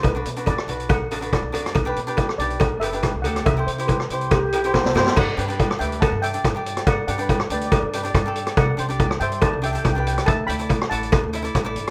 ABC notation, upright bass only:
X:1
M:4/4
L:1/16
Q:1/4=141
K:G
V:1 name="Upright bass" clef=bass
B,,,2 B,,4 B,,,4 A,,,3 B,,, F,,2 | B,,,2 B,,4 B,,,4 F,,,3 B,,, D,,2 | C,,2 C,4 C,,4 B,,,3 C,, G,,2 | G,,2 G,,4 D,,3 G,,3 G,,4 |
G,,2 G,,4 D,,3 G,,3 G,,4 | C,,2 C,,4 G,,3 C,,3 C,,4 | D,,2 D,,4 A,,,3 D,,3 A,,,2 G,,,2 |]